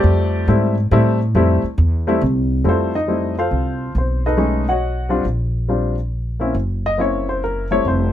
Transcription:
Already playing: grand piano G3 A3 C4 G4 D5
0.04 upright bass F2
0.48 upright bass G#2, grand piano G3 A3 C4 E4
0.91 upright bass A2, grand piano G3 A3 C4 E4
1.35 upright bass F2, grand piano G3 A3 C4 E4
1.63 muted upright bass stroke
1.78 upright bass E2
2.07 grand piano G3 A3 C4 E4
2.21 upright bass C2
2.64 upright bass F2, grand piano G3 A3 C4 E4
2.69 grand piano C4 F4 A4 C5
2.95 grand piano D#4 D#5
3.07 grand piano G3 A3 C4 E4
3.39 grand piano F4 A4 C5 F5
3.51 upright bass C2
3.95 upright bass B1, grand piano C4 C5
4.26 grand piano D#4 A4 B4 D#5
4.37 grand piano G#3 A3 C#4 D#4
4.69 grand piano F#4 C#5 D#5 F#5
5.09 grand piano G3 C4 D4 F4
5.25 upright bass A#1
5.68 grand piano G3 C4 D4 F4
6.40 grand piano A#3 C4 C#4 E4
6.55 upright bass F#1
6.86 grand piano D#5
6.98 grand piano A#3 C4 C#4 E4 C#5
7.29 grand piano C5
7.44 grand piano A#4
7.71 grand piano G3 A3 C4 E4 C#5
7.85 upright bass F1, grand piano C5

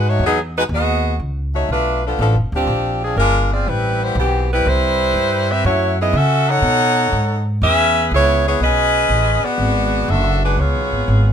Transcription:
Already playing: upright bass G#2
0.08 saxophone section A3 D#4 F#4 C#5
0.19 upright bass E2
0.24 saxophone section F#3 B3 D#4 G#4
0.56 saxophone section G#3 D#4 F#4 B4
0.69 upright bass D#2, saxophone section B3 F#4 D#5
0.73 saxophone section G#4
1.20 upright bass C#2
1.53 saxophone section A3 D#4 F#4 C#5
1.69 upright bass B1, saxophone section A3 D4 F4 B4
2.06 saxophone section F3 B3 D4 A4
2.19 upright bass A1, saxophone section F3 B3 D4 A4
2.35 upright bass F1
2.52 upright bass D1, saxophone section F3 C4 D4 G4
2.67 upright bass A#1
3.03 saxophone section F3 C4 D4 G#4
3.17 upright bass G1, saxophone section G#3 D4 F4 A#4
3.51 saxophone section C4 F4 G#4 D5
3.67 upright bass A1, saxophone section G3 C4 E4 B4
4.02 saxophone section G3 B3 E4 C5
4.15 upright bass B1, saxophone section E3 B3 C4 G4
4.52 saxophone section G3 C4 E4 B4
4.66 upright bass C2, saxophone section G3 E4 B4 C5
5.14 upright bass G2
5.50 saxophone section C4 G4 B4 E5
5.64 upright bass F#2, saxophone section A3 E4 F#4 C#5
6.00 saxophone section B3 E4 G#4 D#5
6.13 upright bass C#3, saxophone section C#4 F#4 A4 E5
6.49 saxophone section D#4 A4 C#5 F#5
6.62 upright bass B2
7.12 upright bass G#2
7.62 upright bass E2, saxophone section C#4 G#4 B4 E5
8.11 upright bass C#2, saxophone section B3 E4 G#4 C#5
8.47 saxophone section B3 E4 G#4 C#5
8.60 upright bass B1, saxophone section C#4 G#4 B4 D#5
9.09 upright bass A1
9.43 saxophone section B3 F#4 G#4 D5, muted upright bass stroke
9.58 upright bass G#1
10.08 upright bass F#1, saxophone section D4 F#4 A4 E5
10.43 saxophone section G#3 D4 F#4 B4
10.57 upright bass C#2, saxophone section B3 F4 G#4 C#5
10.75 upright bass B1
10.91 upright bass G#1
11.08 upright bass G#1

